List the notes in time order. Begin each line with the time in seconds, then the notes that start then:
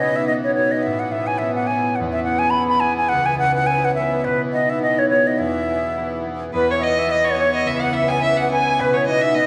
Already playing: B2 E3 B3 C#4 G#4 B4
0.00 B3 D#4 F#4 D#5
0.16 E5
0.27 B3 D#4 F#4 D#5
0.44 C#5
0.54 B3 C#5
0.58 D#4 F#4
0.71 D#5
0.83 A2 E5
0.99 F#5
1.11 B3 C#4 A4 E5
1.27 G#5
1.38 B3 C#4 A4 E5
1.55 F#5
1.67 B3 C#4 G#5
1.71 A4
1.96 E3 B3 F#5
2.00 E2
2.12 E5
2.24 B3 E4 G#4 F#5
2.39 G#5
2.50 B5
2.56 B3 E4 G#4
2.68 B5
2.80 B3 E4 G#5
2.84 G#4
2.97 G#5
3.09 C#2 F#5
3.26 G#5
3.39 C#4 E4 B4 F#5
3.55 F#5
3.67 C#4 E4 G#5
3.71 B4
3.85 F#5
3.95 C#4 E5
3.99 E4 B4
4.25 B2 B4
4.53 B3 D#4 F#4 D#5
4.70 E5
4.80 B3 D#4 D#5
4.86 F#4
4.99 C#5
5.09 B3 D#4 F#4 C#5
5.27 D#5
5.39 E2 E5
5.69 B3 E4 G#4
5.98 B3 E4 G#4
6.27 B3 E4 G#4
6.52 E2 E3 B3 B4
6.70 C#5
6.78 B3 E4 G#4 D#5 E5
6.83 D#5
6.99 E5
7.07 B3 E4 G#4 D#5
7.11 D#5
7.25 C#5
7.34 B3 E4 G#4 C#5 D#5
7.39 C#5
7.54 D#5
7.65 C#2 E5
7.81 F#5
7.92 C#4 E4 B4 E5
8.08 G#5
8.21 C#4 E4 B4 E5
8.37 F#5
8.41 F#5
8.48 C#4 E4 B4 G#5
8.78 B2 B4
8.94 C#5
9.06 B3 D#4 F#4 D#5
9.21 E5
9.35 B3 D#4 F#4 D#5